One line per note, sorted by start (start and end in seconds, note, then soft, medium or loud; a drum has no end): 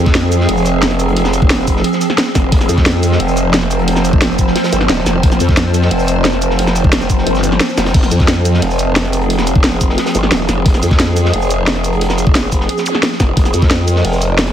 0.00 0.47 F2 loud
0.00 14.53 F3 medium
0.00 14.53 C4 medium
0.00 2.50 G#4 loud
0.06 kick loud
0.06 snare medium
0.15 snare loud
0.15 closed hi-hat medium
0.32 closed hi-hat medium
0.32 shaker medium
0.41 snare medium
0.49 1.83 F1 medium
0.49 closed hi-hat loud
0.49 open hi-hat medium
0.57 shaker soft
0.66 closed hi-hat medium
0.66 shaker medium
0.82 snare loud
0.82 closed hi-hat medium
0.91 snare soft
0.91 closed hi-hat soft
0.99 closed hi-hat medium
0.99 shaker medium
1.08 closed hi-hat soft
1.16 closed hi-hat loud
1.16 closed hi-hat medium
1.25 snare soft
1.25 shaker soft
1.33 closed hi-hat medium
1.33 shaker medium
1.42 kick loud
1.50 snare loud
1.50 closed hi-hat medium
1.59 closed hi-hat soft
1.67 kick medium
1.67 closed hi-hat medium
1.67 shaker medium
1.76 snare soft
1.84 closed hi-hat medium
1.93 snare soft
1.93 shaker soft
2.01 closed hi-hat medium
2.01 shaker medium
2.10 snare soft
2.18 snare loud
2.18 closed hi-hat medium
2.27 snare soft
2.35 2.51 F1 loud
2.35 kick medium
2.35 snare medium
2.35 closed hi-hat medium
2.35 shaker medium
2.52 2.68 F1 loud
2.52 7.92 C5 loud
2.52 kick loud
2.52 closed hi-hat medium
2.61 snare soft
2.61 closed hi-hat soft
2.61 shaker soft
2.69 3.19 F2 loud
2.69 closed hi-hat medium
2.69 shaker medium
2.77 kick loud
2.77 snare medium
2.86 snare loud
2.86 closed hi-hat medium
3.03 closed hi-hat medium
3.03 shaker medium
3.12 snare medium
3.20 4.54 F1 loud
3.20 closed hi-hat medium
3.20 open hi-hat medium
3.28 shaker soft
3.37 closed hi-hat medium
3.37 shaker medium
3.54 snare loud
3.54 closed hi-hat medium
3.62 snare soft
3.62 closed hi-hat soft
3.71 closed hi-hat medium
3.71 shaker medium
3.79 closed hi-hat soft
3.88 closed hi-hat loud
3.88 closed hi-hat medium
3.96 snare soft
3.96 shaker soft
4.05 closed hi-hat medium
4.05 shaker medium
4.13 kick loud
4.21 snare loud
4.21 closed hi-hat medium
4.31 closed hi-hat soft
4.38 kick medium
4.38 closed hi-hat medium
4.38 shaker medium
4.47 snare soft
4.56 snare loud
4.56 closed hi-hat medium
4.56 closed hi-hat loud
4.64 snare loud
4.64 closed hi-hat medium
4.64 shaker soft
4.72 4.88 G1 loud
4.72 closed hi-hat medium
4.72 shaker medium
4.81 snare soft
4.89 5.05 D#1 medium
4.89 snare loud
4.89 closed hi-hat medium
4.99 snare soft
5.06 5.22 F1 loud
5.06 snare medium
5.06 closed hi-hat medium
5.06 shaker medium
5.23 5.39 F1 loud
5.23 kick loud
5.23 closed hi-hat medium
5.23 closed hi-hat loud
5.32 snare soft
5.32 shaker soft
5.40 5.90 F2 loud
5.40 closed hi-hat medium
5.40 shaker medium
5.49 kick loud
5.49 snare soft
5.57 snare loud
5.57 closed hi-hat medium
5.57 closed hi-hat loud
5.74 closed hi-hat medium
5.74 shaker medium
5.82 snare medium
5.91 7.25 F1 loud
5.91 closed hi-hat loud
5.91 open hi-hat medium
6.00 shaker soft
6.08 closed hi-hat medium
6.08 shaker medium
6.25 snare loud
6.25 closed hi-hat medium
6.33 snare soft
6.33 closed hi-hat soft
6.41 closed hi-hat medium
6.41 shaker medium
6.50 snare soft
6.59 closed hi-hat loud
6.67 snare soft
6.67 shaker soft
6.75 closed hi-hat medium
6.75 shaker medium
6.84 kick loud
6.93 snare loud
6.93 closed hi-hat loud
6.93 closed hi-hat medium
7.01 snare soft
7.01 closed hi-hat soft
7.01 shaker soft
7.10 kick medium
7.10 closed hi-hat medium
7.10 shaker medium
7.18 snare soft
7.26 7.59 G1 loud
7.26 closed hi-hat medium
7.26 closed hi-hat loud
7.35 snare soft
7.35 shaker soft
7.44 closed hi-hat medium
7.44 shaker medium
7.52 snare soft
7.60 snare loud
7.60 closed hi-hat medium
7.69 snare soft
7.69 shaker soft
7.78 7.93 F1 loud
7.78 snare loud
7.78 snare medium
7.78 closed hi-hat medium
7.78 shaker medium
7.85 snare loud
7.85 closed hi-hat medium
7.94 8.10 F1 loud
7.94 13.35 G#4 loud
7.94 kick loud
7.94 closed hi-hat loud
7.94 closed hi-hat medium
7.94 crash medium
8.03 snare soft
8.03 closed hi-hat soft
8.03 shaker soft
8.11 8.61 F2 loud
8.11 closed hi-hat medium
8.11 shaker medium
8.20 kick loud
8.20 snare soft
8.27 snare loud
8.27 closed hi-hat loud
8.27 closed hi-hat medium
8.45 closed hi-hat medium
8.45 shaker medium
8.54 snare medium
8.62 9.97 F1 medium
8.62 closed hi-hat loud
8.62 open hi-hat medium
8.71 shaker soft
8.79 closed hi-hat medium
8.79 shaker medium
8.96 snare loud
8.96 closed hi-hat medium
8.96 closed hi-hat loud
9.05 snare soft
9.05 closed hi-hat medium
9.13 closed hi-hat medium
9.13 shaker medium
9.21 closed hi-hat soft
9.30 closed hi-hat loud
9.39 snare medium
9.39 snare soft
9.39 shaker soft
9.47 closed hi-hat medium
9.47 shaker medium
9.55 kick loud
9.64 snare loud
9.64 closed hi-hat medium
9.73 closed hi-hat soft
9.81 kick medium
9.81 closed hi-hat medium
9.81 shaker medium
9.89 snare soft
9.98 snare medium
9.98 closed hi-hat loud
9.98 closed hi-hat medium
10.06 snare loud
10.06 closed hi-hat medium
10.06 shaker soft
10.15 10.30 G1 loud
10.15 closed hi-hat medium
10.15 shaker medium
10.23 snare soft
10.31 10.47 D#1 loud
10.31 snare loud
10.31 closed hi-hat medium
10.40 snare soft
10.49 10.64 F1 loud
10.49 snare medium
10.49 closed hi-hat medium
10.49 shaker medium
10.66 10.81 F1 loud
10.66 kick loud
10.66 closed hi-hat loud
10.74 snare soft
10.74 closed hi-hat soft
10.74 shaker soft
10.83 11.32 F2 loud
10.83 closed hi-hat medium
10.83 shaker medium
10.91 kick loud
10.91 snare medium
10.99 snare loud
10.99 closed hi-hat loud
11.16 closed hi-hat medium
11.16 shaker medium
11.25 snare medium
11.34 12.68 F1 medium
11.34 closed hi-hat medium
11.34 open hi-hat medium
11.42 shaker soft
11.51 closed hi-hat medium
11.51 shaker medium
11.67 snare loud
11.67 closed hi-hat medium
11.75 snare soft
11.75 closed hi-hat soft
11.84 closed hi-hat medium
11.84 shaker medium
11.93 closed hi-hat soft
12.01 closed hi-hat loud
12.01 closed hi-hat medium
12.09 snare medium
12.09 snare soft
12.09 shaker soft
12.18 closed hi-hat medium
12.18 shaker medium
12.27 kick loud
12.35 snare loud
12.35 closed hi-hat medium
12.44 closed hi-hat soft
12.51 kick medium
12.51 closed hi-hat medium
12.51 shaker medium
12.60 snare soft
12.69 closed hi-hat medium
12.78 snare soft
12.78 shaker soft
12.86 closed hi-hat medium
12.86 zap medium
12.86 shaker medium
12.95 snare soft
13.03 snare loud
13.03 closed hi-hat medium
13.12 snare soft
13.20 13.36 F1 loud
13.20 kick medium
13.20 snare medium
13.20 closed hi-hat medium
13.20 shaker medium
13.37 13.52 F1 loud
13.37 14.53 A#4 loud
13.37 kick loud
13.37 closed hi-hat medium
13.45 snare soft
13.45 closed hi-hat soft
13.45 shaker soft
13.53 14.03 F2 loud
13.53 closed hi-hat medium
13.53 shaker medium
13.62 kick loud
13.62 snare soft
13.71 snare loud
13.71 closed hi-hat medium
13.88 closed hi-hat medium
13.88 shaker medium
13.96 snare medium
14.05 14.53 F1 medium
14.05 closed hi-hat medium
14.05 open hi-hat medium
14.13 shaker soft
14.22 closed hi-hat medium
14.22 shaker medium
14.39 snare loud
14.39 closed hi-hat medium
14.47 snare soft
14.47 closed hi-hat soft